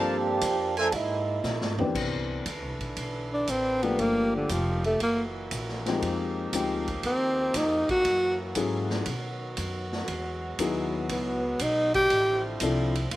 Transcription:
Already playing: G2 F3 A#3 C4 D4 G4 A4 A#4 C5 F5 A5
0.41 F2, kick, hi-hat pedal, ride
0.77 F3 A#3 D4 A4 A#4 C5 E5 G#5, ride
0.92 G#2 G#3 A#3 D#4 E4, kick, ride
1.43 A#2, snare, hi-hat pedal
1.61 G#2, snare
1.77 E2 E3 B3 C4 D4 G4, floor tom
1.95 C2 D3 E3 D4 B4, kick, crash
2.46 D2, kick, hi-hat pedal, ride
2.62 C2
2.79 B1, kick, ride
2.96 B1, kick, ride
3.33 D4
3.47 A1 C4, kick, hi-hat pedal, ride
3.83 F3 A3 A#3 B3 D4 G4, ride
3.99 G1 A#2 F3 A#3 G4, kick, ride
4.36 D3
4.49 F1 F3, kick, hi-hat pedal, ride
4.84 A3, ride
5.00 F#1 E3 A#3 F#4, kick, ride
5.51 A#1, kick, hi-hat pedal, ride
5.69 snare
5.86 F3 G#3 C4 D#4 G4, snare, ride
6.02 F2 F3 D#4 G4, kick, ride
6.53 D2 F3 G#3 C4 D#4 G4, kick, hi-hat pedal, ride
6.88 kick, ride
7.03 D#2 C4, kick, ride
7.54 F2 D#4, kick, snare, hi-hat pedal, ride
7.89 F#4, muted upright bass stroke, kick, ride
8.05 F#2 E3 F#3 F#4, kick, ride
8.55 G#2 F#3 C#4 E4 G#4 A4, kick, hi-hat pedal, ride
8.90 snare
9.06 B2 D#3 B3, kick, ride
9.57 F#2, kick, hi-hat pedal, ride
9.92 snare
10.08 E2 F#3 G#3 B3, kick, ride
10.59 D#2 F#3 B3 D#4 E4 G#4, kick, hi-hat pedal, ride
11.09 C#2 B3, kick, ride
11.59 B1 D#4, kick, hi-hat pedal, ride
11.94 G4, kick, ride
12.10 A1 D3 F3 C4 E4, ride
12.60 C2 F3 C4 D4 E4 A4, kick, hi-hat pedal, ride
12.95 ride
13.11 C#2 D#3 A#3 F4, kick, ride

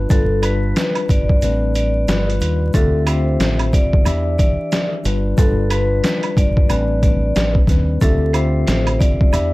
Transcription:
0.09 G1 G3 D4 F4 A4 B4, kick, closed hi-hat, shaker
0.41 G3 D4 F4 B4, closed hi-hat, high woodblock, shaker
0.76 B4, snare, closed hi-hat, shaker
0.95 closed hi-hat, high woodblock
1.09 G1 D5, kick, closed hi-hat, shaker
1.29 kick
1.42 A1 A2 G3 C4 D4 B4, closed hi-hat, shaker
1.75 D5, closed hi-hat, shaker
2.07 G1 G2 G3 F4 B4, snare, closed hi-hat, shaker
2.30 closed hi-hat
2.39 D#2 G2 G3 F4 B4, closed hi-hat, shaker
2.73 D2 D3 C4 F4 G4 A4 E5, kick, closed hi-hat, shaker
3.05 D3 C4 F4 G4 C5 E5, closed hi-hat, high woodblock, shaker
3.40 A1 C5, snare, closed hi-hat, shaker
3.59 closed hi-hat, high woodblock
3.73 D5, kick, closed hi-hat, shaker
3.93 kick
4.04 E2 E3 D4 G4 E5, closed hi-hat, high woodblock, shaker
4.38 D5, kick, closed hi-hat, shaker
4.72 snare, closed hi-hat, shaker
5.04 G1 G3 D4 F4 B4, closed hi-hat, shaker
5.37 G1 G3 D4 F4 A4 B4, kick, closed hi-hat, shaker
5.69 G3 D4 F4 B4, closed hi-hat, high woodblock, shaker
6.03 B4, snare, closed hi-hat, shaker
6.23 closed hi-hat, high woodblock
6.37 G1 D5, kick, closed hi-hat, shaker
6.57 kick
6.68 A1 A2 G3 C4 D4 B4, closed hi-hat, high woodblock, shaker
7.02 D5, kick, closed hi-hat, shaker
7.35 A1, snare, closed hi-hat, shaker
7.55 kick
7.67 D#2 A2 G3 C4 D4 B4, kick, snare, closed hi-hat, shaker
8.01 D2 D3 C4 F4 G4 A4 E5, kick, closed hi-hat, shaker
8.33 D3 C4 F4 G4 C5 E5, closed hi-hat, high woodblock, shaker
8.67 A1 C5, snare, closed hi-hat, shaker
8.87 closed hi-hat, high woodblock
8.99 D5, kick, closed hi-hat, shaker
9.21 kick
9.31 E2 E3 D4 G4 E5, closed hi-hat, high woodblock, shaker

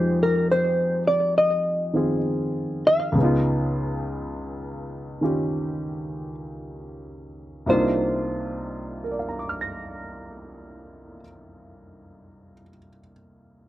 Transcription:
Already playing: F2 F3 G#3 D#4 G4 C5
0.23 A#4
0.52 C5
1.07 D5
1.38 D#5
1.94 D#3 C4 F4 G#4
2.87 F5
3.12 C#2 C#3
3.18 B3 D#4
3.24 F4
5.21 D#3 C#4 F4 G4
7.66 C2 C3 A#3 D4 D#4 F4 C5
9.04 A#4
9.12 D5
9.19 F5
9.29 A#5
9.39 D6
9.49 F6
9.61 A#6

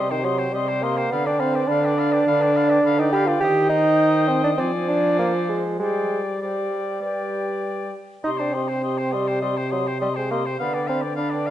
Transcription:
Already playing: C3 D#5 C6
0.08 D#3 C5 G5
0.22 F#3 G4 D#5 C6
0.36 C5 G5
0.51 C3 G3 G4 D#5
0.55 C6
0.66 C5 G5
0.81 A#3 G4 D#5 C6
0.96 C5 G5
1.10 D3 B3 D5 F5 B5
1.25 D4 B4 D5 G5
1.39 C4 D5 F5 B5
1.53 B4 D5 G5
1.67 D3 D4 D5 F5 B5
1.82 B4 D5 G5
1.95 D5 F5 B5
2.12 B4 D5 G5
2.26 D3 D5 F5 B5
2.39 B4 D5 G5
2.53 D5 F5 B5
2.68 B4 D5 G5
2.82 D3 D5 F5 B5
2.97 D#4 B4 D5 G5
3.11 G4 D5 F5 B5
3.26 F4 B4 D5 G5
3.40 D#3 G4 C5 D#5 G5
3.69 D#4
4.28 C4
4.44 D4
4.58 F3 C4 C5 D5 G#5
4.88 D4
5.19 A#3
5.49 G#3
5.79 G3 G#3 C5 D5 G5
6.41 G3 C5 D5 G5
7.02 G3 B4 D5 G5
8.23 C3 D#4 G4 D#5 C6
8.37 D4 C5 G5
8.53 C4 G4 D#5 C6
8.68 C5 G5
8.82 G4 D#5 C6
8.98 C5 G5
9.11 G3 G4 D#5 C6
9.27 C5 G5
9.41 G3 G4 D#5 C6
9.57 C5 G5
9.71 F#3 G4 D#5 C6
9.86 C5 G5
10.00 G3 G4 D#5 C6
10.14 G#3 C5 G5
10.31 A#3 G4 D#5 C6
10.46 C5 G5
10.59 D3 B3 D5 F5 B5
10.74 B4 D5 G5
10.87 C4 D5 F5 B5
11.01 B4 D5 G5
11.16 D4 D5 F5 B5
11.30 D5 G5
11.35 B4
11.46 F5

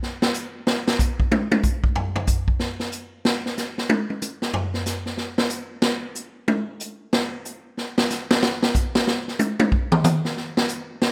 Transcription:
0.03 snare
0.22 snare
0.34 hi-hat pedal
0.67 snare
0.88 snare
0.99 kick, hi-hat pedal
1.20 kick
1.32 high tom
1.52 high tom
1.63 kick, hi-hat pedal
1.84 kick
1.96 floor tom
2.16 floor tom
2.27 kick, hi-hat pedal
2.48 kick
2.59 snare
2.80 snare
2.92 hi-hat pedal
3.25 snare
3.46 snare
3.57 snare, hi-hat pedal
3.78 snare
3.89 high tom
4.10 high tom
4.22 hi-hat pedal, high tom
4.42 snare
4.54 floor tom
4.74 snare
4.86 snare, hi-hat pedal
5.06 snare
5.17 snare
5.38 snare
5.49 hi-hat pedal
5.82 snare
6.15 hi-hat pedal
6.48 high tom
6.80 hi-hat pedal
7.13 snare
7.45 hi-hat pedal
7.77 snare
7.98 snare
8.10 snare, hi-hat pedal
8.31 snare
8.43 snare
8.63 snare
8.74 kick, hi-hat pedal
8.95 snare
9.07 snare
9.28 snare
9.39 hi-hat pedal, high tom
9.60 high tom
9.72 kick
9.92 mid tom
10.04 hi-hat pedal, mid tom
10.25 snare
10.37 snare
10.57 snare
10.68 hi-hat pedal
11.02 snare

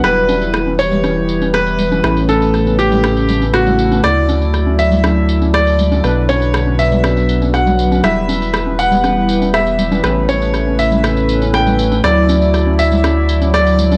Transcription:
0.04 E1 E3 G3 B3 E4 G4 B4, cross-stick, tambourine
0.29 tambourine, high conga
0.42 tambourine
0.54 cross-stick, tambourine
0.67 high conga
0.79 C#5, tambourine
0.92 tambourine, low conga
1.04 cross-stick, tambourine, high conga
1.29 tambourine
1.42 tambourine, high conga
1.54 B4, cross-stick, tambourine
1.67 tambourine
1.79 tambourine, low conga
1.92 tambourine, high conga, low conga
2.04 A1 A2 C#3 A3 C#4 E4 B4, cross-stick, tambourine
2.17 tambourine
2.29 A4, tambourine, high conga
2.42 tambourine
2.54 cross-stick, tambourine
2.67 tambourine, high conga
2.79 G4, tambourine
2.92 tambourine, low conga
3.04 cross-stick, tambourine, high conga
3.17 tambourine
3.29 tambourine, low conga
3.41 tambourine, high conga
3.54 F#4, cross-stick, tambourine
3.67 tambourine, low conga
3.79 tambourine
3.92 tambourine, high conga
4.04 D2 D3 F#3 E4 D5, cross-stick, tambourine
4.29 tambourine, high conga
4.42 tambourine
4.54 cross-stick, tambourine
4.67 high conga
4.79 E5, tambourine
4.92 tambourine, low conga
5.04 cross-stick, tambourine, high conga
5.29 tambourine
5.42 tambourine, high conga
5.54 D5, cross-stick, tambourine
5.67 tambourine
5.79 tambourine, low conga
5.92 tambourine, high conga, low conga
6.04 B1 B2 F#3 B3 D4 F#4 B4, cross-stick, tambourine
6.29 C#5, tambourine, high conga
6.42 tambourine
6.54 cross-stick, tambourine
6.67 high conga
6.79 E5, tambourine
6.92 tambourine, low conga
7.04 cross-stick, tambourine, high conga
7.17 tambourine
7.29 tambourine
7.42 tambourine, high conga
7.54 F#5, cross-stick, tambourine
7.67 tambourine, low conga
7.79 tambourine
7.92 tambourine, high conga
8.04 E1 E3 G3 E4 G4 B4 E5, cross-stick, tambourine
8.29 tambourine, high conga
8.42 tambourine
8.54 cross-stick, tambourine
8.67 high conga
8.79 F#5, tambourine
8.92 tambourine, low conga
9.04 cross-stick, tambourine, high conga
9.29 tambourine
9.42 tambourine, high conga
9.54 E5, cross-stick, tambourine
9.67 tambourine
9.79 tambourine, low conga
9.92 tambourine, high conga, low conga
10.04 A1 A2 C#3 A3 C#4 E4 B4, cross-stick, tambourine
10.29 C#5, tambourine, high conga
10.42 tambourine
10.54 cross-stick, tambourine
10.67 high conga
10.79 E5, tambourine
10.92 tambourine, low conga
11.04 cross-stick, tambourine, high conga
11.17 tambourine
11.29 tambourine
11.42 tambourine, high conga
11.54 G5, cross-stick, tambourine
11.67 tambourine, low conga
11.79 tambourine
11.92 tambourine, high conga
12.04 D2 D3 F#3 E4 D5, cross-stick, tambourine
12.29 tambourine, high conga
12.42 tambourine
12.54 cross-stick, tambourine
12.67 high conga
12.79 E5, tambourine
12.92 tambourine, low conga
13.04 cross-stick, tambourine, high conga
13.29 tambourine
13.42 tambourine, high conga
13.54 D5, cross-stick, tambourine
13.67 tambourine
13.79 tambourine, low conga
13.92 tambourine, high conga, low conga

